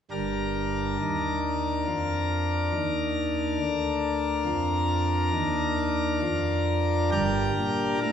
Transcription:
pipe organ
0.11 G1 G2 D4 A#4
1.01 D#2
1.87 F2
2.74 D#2
3.60 D2
4.45 F2
5.33 D#2
6.22 F2
7.12 G1 G2 D4 G4 A#4
7.57 A#2
8.01 A2 A#4

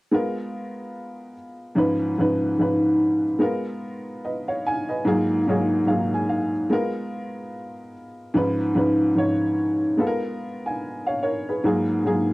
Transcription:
upright piano
0.11 G#3 B3 F4 A#4
1.75 G#2 F3 C#4 D#4 B4
2.18 G#2 F3 C#4 D#4 B4
2.59 G#2 F3 C#4 D#4 B4
3.39 G#3 B3 F4 A#4
4.25 B4 D#5
4.48 C#5 F5
4.67 F5 G#5
4.89 B4 D#5
5.05 G#2 F#3 A#3 F4 G#4
5.48 G#2 F#3 A#3 F4 G#4 C#5
5.86 G#2 F#3 A#3 F4 G#4 F5
6.14 G#5
6.29 F5
6.70 G#3 B3 F4 A#4
8.34 G#2 F3 C#4 D#4 B4
8.75 G#2 F3 C#4 D#4 B4
9.15 G#2 F3 C#4 D#4 C#5
9.97 G#3 B3 F4 A4
10.07 A#4
10.66 F5 G#5
11.06 C#5 F5
11.23 A#4 C#5
11.49 G#4 B4
11.64 G#2 F#3 A#3 F4 G#4
12.04 G#2 F#3 A#3 F4 G#4

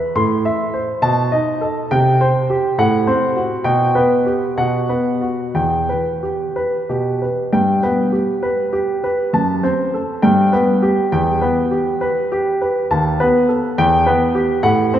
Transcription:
grand piano
Already playing: B4
0.16 A2 C6
0.45 E5
0.74 C5
1.02 B2 A5
1.32 D#4 D#5
1.61 A4
1.91 C3 G5
2.21 C5
2.50 G4
2.78 A2 F#5
3.07 C4 C5
3.36 F#4
3.64 B2 G5
3.95 B3 B4
4.26 G4
4.58 B2 F#5
4.89 B3 B4
5.21 F#4
5.54 E2 G5
5.89 B4
6.23 G4
6.56 B4
6.89 B2 G4
7.22 B4
7.53 G2 G5
7.83 B3 B4
8.12 G4
8.43 B4
8.73 G4
9.04 B4
9.33 F#2 A5
9.63 C4 C5
9.94 A4
10.22 G2 G5
10.52 B3 B4
10.82 G4
11.12 E2 G5
11.41 B3 B4
11.71 G4
12.01 B4
12.32 G4
12.61 B4
12.91 D#2 A5
13.20 B3 B4
13.49 A4
13.78 E2 G5
14.06 B3 B4
14.35 G4
14.63 A2 F#5
14.94 C4 C5

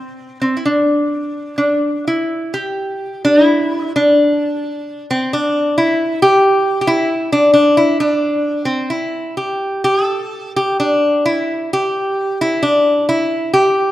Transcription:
resonator guitar played with a steel bar
Already playing: C4
0.41 C4
0.57 E4
0.65 D4
1.58 D4
2.08 E4
2.54 G4
3.25 D4
3.45 E4
3.96 D4
5.11 C4
5.33 D4
5.78 E4
6.22 G4
6.81 G4
6.87 E4
7.32 D4
7.54 D4
7.77 E4
8.00 D4
8.65 C4
8.90 E4
9.37 G4
9.84 G4
10.04 A4
10.56 G4
10.80 D4
11.26 E4
11.73 G4
12.41 E4
12.63 D4
13.09 E4
13.53 G4

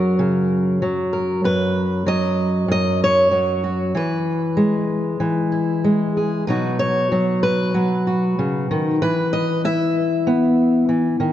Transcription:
steel-string acoustic guitar
Already playing: F#2 F#3 F#4 A#4
0.19 C#3
0.82 F#3
1.13 A#4
1.44 F#2 B4
2.06 F#3 D#5
2.68 F#2 D#5
3.04 C#5
3.31 F#3
3.64 F#4
3.95 E3 B4
4.57 G#3
5.20 E3
5.52 E4
5.84 G#3
6.17 G#4
6.47 B2 F#3 D#4 F#4 B4
6.79 C#5
7.12 F#3
7.43 B4
7.74 F#3
8.07 F#4
8.39 C#3
8.71 D#3
9.02 E3 B4
9.33 D#5
9.65 E4 E5
10.27 B3
10.89 E3
11.20 D#3

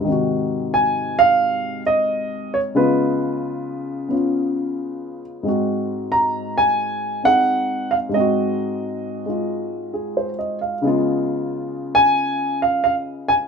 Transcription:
upright piano
0.01 G#2 D#3
0.08 C3 F#4
0.74 G#5
1.19 F5
1.86 D#5
2.54 C#5
2.75 C#3 G#3 B3 F4 B4
4.09 B3 C#4 F4
5.43 G#2 G#3 C4
5.48 F#4
6.12 A#5
6.58 G#5
7.24 C4 D#4 G#4 F#5
7.91 F5
8.09 G#2 G#3
8.14 C4 D#5
8.20 F#4
9.26 G#3 F4
9.94 G#4
10.17 C5
10.39 D#5
10.61 F5
10.82 C#3 G#3 B3
10.87 F4
11.95 G#5
12.62 F5
12.84 F5
13.28 G#5

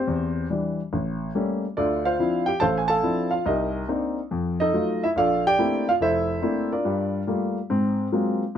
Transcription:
grand piano
Already playing: C4 G4 C5
0.07 E2
0.50 E3 G3 D4
0.93 A1
1.35 G3 A3 A#3 C#4
1.77 D2 D3 D4 F4 A4 D5
2.05 F4 C5 F5
2.19 F3 C4 D4 E4
2.46 G4 G5
2.60 A1 A4 C5 F5 A5
2.78 G#5
2.88 A4 F5 A5
3.03 F3 C4 D4 E4
3.31 F4 F5
3.46 C2 D#4 G4 A#4 D#5
3.88 A#3 C4 D4 D#4
4.31 F2
4.60 D#4 A4 D#5
4.73 F#3 A3 D#4 F4
5.03 E4 E5
5.16 A#1 F4 A4 D5 F5
5.47 G4 D5 G5
5.59 A3 A#3 C4 D4 E4
5.89 F4 F5
6.00 F1 E4 A4 C5 E5
6.42 A3 A#3 C4 D4 E4
6.72 D4 F4 A#4 D5
6.85 G2 G3
7.27 G3 A3 A#3 F4
7.70 G#2 C4
8.12 F#3 G#3 A#3 C4 F4

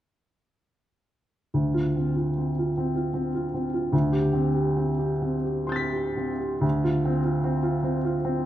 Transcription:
grand piano
1.54 D2
1.74 F4
1.96 C4
2.16 F4
2.38 C4
2.58 F4
2.78 C4
2.96 F4
3.14 C4
3.35 F4
3.54 C4
3.74 F4
3.92 D2
4.12 G4
4.33 C4
4.54 G4
4.77 C4
4.98 G4
5.22 C4
5.44 G4
5.67 C4 C6 G6
5.72 A6 B6
5.92 G4
6.17 C4
6.39 G4
6.61 D2
6.84 F4
7.05 C4
7.24 F4
7.44 C4
7.63 F4
7.83 C4
8.05 F4
8.25 C4

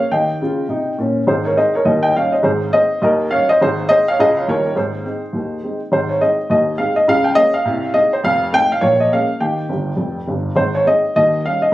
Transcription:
upright piano
Already playing: C#5 F5
0.12 D#3 G4 D#5 G5
0.42 C#3 F4
0.68 C3 D#4
0.98 A#2 C#4
1.27 G#1 G#2 G#4 C5
1.45 A#4 C#5
1.56 G#3 C4 D#4 C5 D#5
1.75 A#4 C#5
1.85 D#2 D#3 A#4 D#5
2.03 D#5 G5
2.15 G3 C#4 D#4 C#5 F5
2.32 C5 D#5
2.43 G#1 G#2 G#4 C5
2.72 G#3 C4 D#4 C5 D#5
3.02 D#2 D#3 A#4 D#5
3.30 G3 C#4 D#4 C#5 F5
3.49 C5 D#5
3.61 G#1 G#2 G#4 C5
3.89 G#3 C4 D#4 C5 D#5
4.08 C#5 F5
4.19 C#2 C#3 G#3 C#4 F4 G#4 D#5
4.37 C#5 F5
4.48 D#2 D#3 G3 A#3 F4 A#4 C#5
4.66 G4 A#4
4.75 G#1 G#2 G#4 C5
5.05 G#3 C4 D#4
5.33 D#2 D#3
5.63 G#3 C4 D#4
5.92 G#1 G#2 C5
6.09 C#5
6.21 G#3 C4 D#4 D#5
6.50 D#2 D#3 D#5
6.78 G#3 C4 D#4 F5
6.96 D#5
7.08 C#2 C#3 F5
7.24 G5
7.35 G#3 A#3 C#4 D#5
7.54 F5
7.65 C2 C3
7.94 G#3 C4 D#4 D#5
8.13 C5
8.24 F1 F2 F5
8.53 A3 C4 D#4 G5
8.72 F5
8.81 A#1 A#2 C#5
9.00 D#5
9.12 G#3 A#3 C#4 F5
9.40 D#3 G4 G5
9.70 G1 G2
9.96 F1 F2
10.28 G1 G2
10.55 G#1 G#2 C5
10.75 C#5
10.86 G#3 C4 D#4 D#5
11.16 D#2 D#3 D#5
11.45 G3 C#4 D#4 F5
11.62 D#5

